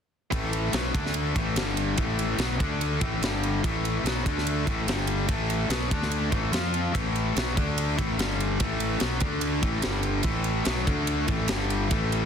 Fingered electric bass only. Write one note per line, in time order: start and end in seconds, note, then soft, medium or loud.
0.32 0.71 A1 medium
0.73 0.92 B1 medium
0.94 1.32 D2 medium
1.36 1.55 A1 medium
1.56 1.94 G1 medium
1.99 2.37 A1 medium
2.38 2.58 B1 medium
2.60 2.98 D2 medium
3.01 3.20 A1 medium
3.22 3.60 G1 medium
3.65 4.02 A1 medium
4.03 4.23 B1 medium
4.27 4.64 D2 loud
4.67 4.86 A1 medium
4.87 5.26 G1 medium
5.29 5.67 A1 medium
5.69 5.89 B1 medium
5.92 6.30 D2 loud
6.32 6.51 A1 medium
6.52 6.90 F2 medium
6.95 7.33 A1 medium
7.36 7.55 B1 medium
7.57 7.95 D2 medium
7.99 8.17 A1 medium
8.19 8.57 G1 medium
8.60 8.98 A1 medium
9.01 9.20 B1 medium
9.21 9.60 D2 medium
9.63 9.82 A1 medium
9.85 10.23 G1 medium
10.25 10.63 A1 medium
10.66 10.86 B1 medium
10.87 11.26 D2 medium
11.28 11.48 A1 loud
11.50 11.88 G1 medium
11.91 12.25 A1 medium